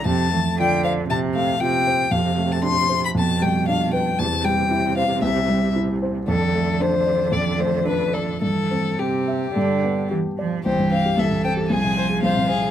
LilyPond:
<<
  \new Staff \with { instrumentName = "Violin" } { \time 4/4 \key f \major \tempo 4 = 115 a''4 g''8 f''8 a''8 f''8 g''4 | \key c \major f''8. a''16 c'''8. b''16 a''8 g''8 f''8 g''8 | a''8 g''4 f''8 e''4 r4 | a'4 c''4 d''8 c''8 b'8 a'8 |
a'4 g'2 r4 | c''8 f''8 e''8 g''8 aes''4 f''4 | }
  \new Staff \with { instrumentName = "Violin" } { \time 4/4 \key f \major r1 | \key c \major r1 | r1 | r1 |
r1 | g'4 a'4 aes'8 c''8 c''8 aes'8 | }
  \new Staff \with { instrumentName = "Grand piano" } { \time 4/4 \key f \major f,8 a8 f'8 c''8 c8 a8 f'8 c''8 | \key c \major f,8 a8 d'8 c''8 f,8 g8 d'8 b'8 | e,8 g8 e'8 c''8 c,8 g8 e'8 c''8 | f,8 a8 d'8 d''8 f,8 a8 d'8 d''8 |
g,8 c'8 g'8 e''8 g,8 b8 g'8 d''8 | c,16 g,16 c'16 g'16 c,16 g,16 c'16 g'16 c,16 c16 c'16 aes'16 c,16 c16 c'16 aes'16 | }
  \new Staff \with { instrumentName = "Cello" } { \clef bass \time 4/4 \key f \major c8 e8 d4 c4 c4 | \key c \major c2 b,2 | c1 | d1 |
e4 c4 d4 e8 f8 | e4 e4 f2 | }
>>